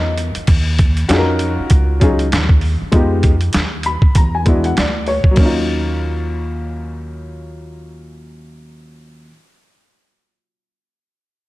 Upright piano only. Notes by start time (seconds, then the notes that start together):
1.09 C#4 D#4 F4 F#4 G#4
1.18 A#4
2.00 F#3 C#4 D#4 F4 G#4
2.92 G#3 B3 D#4 F4 G4
3.86 B5
4.16 A#5
4.35 G#5
4.45 G#3 B3 D4 E4 F#4
4.65 F#5
4.78 D5
5.08 C#5
5.31 F#3 A#3
5.39 C#4 D#4
5.46 F4